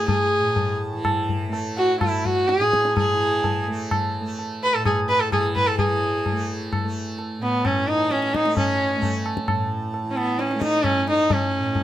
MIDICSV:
0, 0, Header, 1, 4, 480
1, 0, Start_track
1, 0, Tempo, 478851
1, 86, Time_signature, 3, 2, 24, 8
1, 3445, Tempo, 470219
1, 6325, Tempo, 458015
1, 12168, End_track
2, 0, Start_track
2, 0, Title_t, "Sarangi"
2, 0, Program_c, 0, 110
2, 81, Note_on_c, 0, 68, 78
2, 768, Note_off_c, 0, 68, 0
2, 1775, Note_on_c, 0, 66, 81
2, 1997, Note_off_c, 0, 66, 0
2, 2007, Note_on_c, 0, 64, 73
2, 2257, Note_on_c, 0, 66, 86
2, 2272, Note_off_c, 0, 64, 0
2, 2488, Note_on_c, 0, 68, 93
2, 2503, Note_off_c, 0, 66, 0
2, 2967, Note_off_c, 0, 68, 0
2, 2984, Note_on_c, 0, 68, 83
2, 3653, Note_off_c, 0, 68, 0
2, 4665, Note_on_c, 0, 71, 93
2, 4775, Note_on_c, 0, 69, 78
2, 4790, Note_off_c, 0, 71, 0
2, 4887, Note_off_c, 0, 69, 0
2, 4893, Note_on_c, 0, 68, 71
2, 5003, Note_off_c, 0, 68, 0
2, 5131, Note_on_c, 0, 71, 89
2, 5248, Note_on_c, 0, 69, 82
2, 5264, Note_off_c, 0, 71, 0
2, 5362, Note_off_c, 0, 69, 0
2, 5368, Note_on_c, 0, 68, 76
2, 5480, Note_off_c, 0, 68, 0
2, 5601, Note_on_c, 0, 71, 84
2, 5723, Note_on_c, 0, 69, 84
2, 5738, Note_off_c, 0, 71, 0
2, 5831, Note_off_c, 0, 69, 0
2, 5837, Note_on_c, 0, 68, 68
2, 6521, Note_off_c, 0, 68, 0
2, 7545, Note_on_c, 0, 59, 83
2, 7790, Note_on_c, 0, 61, 73
2, 7806, Note_off_c, 0, 59, 0
2, 8021, Note_on_c, 0, 63, 88
2, 8037, Note_off_c, 0, 61, 0
2, 8268, Note_on_c, 0, 61, 82
2, 8284, Note_off_c, 0, 63, 0
2, 8508, Note_on_c, 0, 63, 93
2, 8524, Note_off_c, 0, 61, 0
2, 8741, Note_off_c, 0, 63, 0
2, 8747, Note_on_c, 0, 61, 81
2, 9427, Note_off_c, 0, 61, 0
2, 10358, Note_on_c, 0, 61, 55
2, 10419, Note_on_c, 0, 59, 79
2, 10435, Note_off_c, 0, 61, 0
2, 10660, Note_on_c, 0, 61, 74
2, 10675, Note_off_c, 0, 59, 0
2, 10893, Note_off_c, 0, 61, 0
2, 10899, Note_on_c, 0, 63, 87
2, 11133, Note_on_c, 0, 61, 86
2, 11149, Note_off_c, 0, 63, 0
2, 11374, Note_off_c, 0, 61, 0
2, 11392, Note_on_c, 0, 63, 92
2, 11637, Note_on_c, 0, 61, 80
2, 11653, Note_off_c, 0, 63, 0
2, 12168, Note_off_c, 0, 61, 0
2, 12168, End_track
3, 0, Start_track
3, 0, Title_t, "Tanpura"
3, 0, Program_c, 1, 104
3, 0, Note_on_c, 1, 45, 53
3, 0, Note_on_c, 1, 52, 58
3, 0, Note_on_c, 1, 57, 60
3, 386, Note_off_c, 1, 45, 0
3, 390, Note_on_c, 1, 45, 56
3, 925, Note_off_c, 1, 52, 0
3, 929, Note_on_c, 1, 52, 60
3, 1492, Note_off_c, 1, 57, 0
3, 1492, Note_on_c, 1, 57, 60
3, 2027, Note_off_c, 1, 57, 0
3, 2027, Note_on_c, 1, 57, 64
3, 2576, Note_off_c, 1, 45, 0
3, 2580, Note_on_c, 1, 45, 55
3, 3143, Note_off_c, 1, 52, 0
3, 3147, Note_on_c, 1, 52, 59
3, 3690, Note_off_c, 1, 57, 0
3, 3690, Note_on_c, 1, 57, 57
3, 4233, Note_off_c, 1, 57, 0
3, 4233, Note_on_c, 1, 57, 56
3, 4778, Note_off_c, 1, 45, 0
3, 4782, Note_on_c, 1, 45, 57
3, 5338, Note_off_c, 1, 52, 0
3, 5342, Note_on_c, 1, 52, 65
3, 5841, Note_off_c, 1, 52, 0
3, 5841, Note_on_c, 1, 52, 55
3, 6393, Note_off_c, 1, 57, 0
3, 6393, Note_on_c, 1, 57, 64
3, 6937, Note_off_c, 1, 57, 0
3, 6937, Note_on_c, 1, 57, 61
3, 7504, Note_off_c, 1, 45, 0
3, 7508, Note_on_c, 1, 45, 59
3, 8062, Note_off_c, 1, 52, 0
3, 8062, Note_on_c, 1, 52, 57
3, 8622, Note_off_c, 1, 57, 0
3, 8622, Note_on_c, 1, 57, 56
3, 9170, Note_off_c, 1, 57, 0
3, 9170, Note_on_c, 1, 57, 58
3, 9722, Note_off_c, 1, 45, 0
3, 9726, Note_on_c, 1, 45, 53
3, 10270, Note_off_c, 1, 52, 0
3, 10274, Note_on_c, 1, 52, 52
3, 10818, Note_off_c, 1, 57, 0
3, 10818, Note_on_c, 1, 57, 59
3, 11372, Note_off_c, 1, 57, 0
3, 11372, Note_on_c, 1, 57, 53
3, 11899, Note_off_c, 1, 45, 0
3, 11903, Note_on_c, 1, 45, 55
3, 12168, Note_off_c, 1, 45, 0
3, 12168, Note_off_c, 1, 52, 0
3, 12168, Note_off_c, 1, 57, 0
3, 12168, End_track
4, 0, Start_track
4, 0, Title_t, "Tabla"
4, 83, Note_on_c, 9, 63, 93
4, 83, Note_on_c, 9, 64, 85
4, 183, Note_off_c, 9, 63, 0
4, 183, Note_off_c, 9, 64, 0
4, 562, Note_on_c, 9, 63, 66
4, 562, Note_on_c, 9, 64, 62
4, 662, Note_off_c, 9, 63, 0
4, 662, Note_off_c, 9, 64, 0
4, 1050, Note_on_c, 9, 60, 78
4, 1050, Note_on_c, 9, 64, 62
4, 1150, Note_off_c, 9, 60, 0
4, 1150, Note_off_c, 9, 64, 0
4, 1294, Note_on_c, 9, 64, 54
4, 1394, Note_off_c, 9, 64, 0
4, 1533, Note_on_c, 9, 63, 73
4, 1633, Note_off_c, 9, 63, 0
4, 2016, Note_on_c, 9, 60, 74
4, 2016, Note_on_c, 9, 64, 68
4, 2116, Note_off_c, 9, 60, 0
4, 2116, Note_off_c, 9, 64, 0
4, 2258, Note_on_c, 9, 64, 52
4, 2358, Note_off_c, 9, 64, 0
4, 2496, Note_on_c, 9, 62, 73
4, 2596, Note_off_c, 9, 62, 0
4, 2619, Note_on_c, 9, 62, 60
4, 2720, Note_off_c, 9, 62, 0
4, 2740, Note_on_c, 9, 37, 53
4, 2840, Note_off_c, 9, 37, 0
4, 2858, Note_on_c, 9, 62, 62
4, 2958, Note_off_c, 9, 62, 0
4, 2974, Note_on_c, 9, 63, 107
4, 2974, Note_on_c, 9, 64, 87
4, 3074, Note_off_c, 9, 63, 0
4, 3074, Note_off_c, 9, 64, 0
4, 3449, Note_on_c, 9, 63, 77
4, 3449, Note_on_c, 9, 64, 66
4, 3551, Note_off_c, 9, 63, 0
4, 3551, Note_off_c, 9, 64, 0
4, 3931, Note_on_c, 9, 60, 74
4, 3931, Note_on_c, 9, 64, 66
4, 4033, Note_off_c, 9, 60, 0
4, 4033, Note_off_c, 9, 64, 0
4, 4416, Note_on_c, 9, 63, 70
4, 4518, Note_off_c, 9, 63, 0
4, 4892, Note_on_c, 9, 60, 75
4, 4892, Note_on_c, 9, 64, 67
4, 4994, Note_off_c, 9, 60, 0
4, 4994, Note_off_c, 9, 64, 0
4, 5130, Note_on_c, 9, 62, 55
4, 5232, Note_off_c, 9, 62, 0
4, 5371, Note_on_c, 9, 60, 73
4, 5371, Note_on_c, 9, 64, 66
4, 5473, Note_off_c, 9, 60, 0
4, 5473, Note_off_c, 9, 64, 0
4, 5614, Note_on_c, 9, 64, 53
4, 5716, Note_off_c, 9, 64, 0
4, 5843, Note_on_c, 9, 63, 94
4, 5843, Note_on_c, 9, 64, 85
4, 5945, Note_off_c, 9, 63, 0
4, 5945, Note_off_c, 9, 64, 0
4, 6326, Note_on_c, 9, 63, 75
4, 6326, Note_on_c, 9, 64, 65
4, 6430, Note_off_c, 9, 63, 0
4, 6430, Note_off_c, 9, 64, 0
4, 6815, Note_on_c, 9, 60, 73
4, 6815, Note_on_c, 9, 64, 66
4, 6920, Note_off_c, 9, 60, 0
4, 6920, Note_off_c, 9, 64, 0
4, 7297, Note_on_c, 9, 63, 78
4, 7402, Note_off_c, 9, 63, 0
4, 7783, Note_on_c, 9, 60, 72
4, 7783, Note_on_c, 9, 64, 60
4, 7887, Note_off_c, 9, 60, 0
4, 7887, Note_off_c, 9, 64, 0
4, 8031, Note_on_c, 9, 62, 52
4, 8136, Note_off_c, 9, 62, 0
4, 8264, Note_on_c, 9, 62, 70
4, 8369, Note_off_c, 9, 62, 0
4, 8385, Note_on_c, 9, 62, 54
4, 8489, Note_off_c, 9, 62, 0
4, 8513, Note_on_c, 9, 37, 60
4, 8618, Note_off_c, 9, 37, 0
4, 8626, Note_on_c, 9, 62, 62
4, 8731, Note_off_c, 9, 62, 0
4, 8745, Note_on_c, 9, 63, 100
4, 8745, Note_on_c, 9, 64, 82
4, 8850, Note_off_c, 9, 63, 0
4, 8850, Note_off_c, 9, 64, 0
4, 9223, Note_on_c, 9, 63, 75
4, 9223, Note_on_c, 9, 64, 68
4, 9328, Note_off_c, 9, 63, 0
4, 9328, Note_off_c, 9, 64, 0
4, 9467, Note_on_c, 9, 60, 54
4, 9572, Note_off_c, 9, 60, 0
4, 9586, Note_on_c, 9, 37, 58
4, 9691, Note_off_c, 9, 37, 0
4, 9701, Note_on_c, 9, 60, 72
4, 9701, Note_on_c, 9, 64, 69
4, 9806, Note_off_c, 9, 60, 0
4, 9806, Note_off_c, 9, 64, 0
4, 10183, Note_on_c, 9, 63, 77
4, 10288, Note_off_c, 9, 63, 0
4, 10428, Note_on_c, 9, 60, 61
4, 10533, Note_off_c, 9, 60, 0
4, 10656, Note_on_c, 9, 62, 70
4, 10761, Note_off_c, 9, 62, 0
4, 10781, Note_on_c, 9, 62, 55
4, 10886, Note_off_c, 9, 62, 0
4, 10891, Note_on_c, 9, 37, 60
4, 10996, Note_off_c, 9, 37, 0
4, 11013, Note_on_c, 9, 62, 56
4, 11118, Note_off_c, 9, 62, 0
4, 11128, Note_on_c, 9, 60, 72
4, 11128, Note_on_c, 9, 64, 68
4, 11233, Note_off_c, 9, 60, 0
4, 11233, Note_off_c, 9, 64, 0
4, 11373, Note_on_c, 9, 62, 57
4, 11478, Note_off_c, 9, 62, 0
4, 11612, Note_on_c, 9, 63, 107
4, 11612, Note_on_c, 9, 64, 93
4, 11716, Note_off_c, 9, 63, 0
4, 11716, Note_off_c, 9, 64, 0
4, 12084, Note_on_c, 9, 63, 75
4, 12084, Note_on_c, 9, 64, 65
4, 12168, Note_off_c, 9, 63, 0
4, 12168, Note_off_c, 9, 64, 0
4, 12168, End_track
0, 0, End_of_file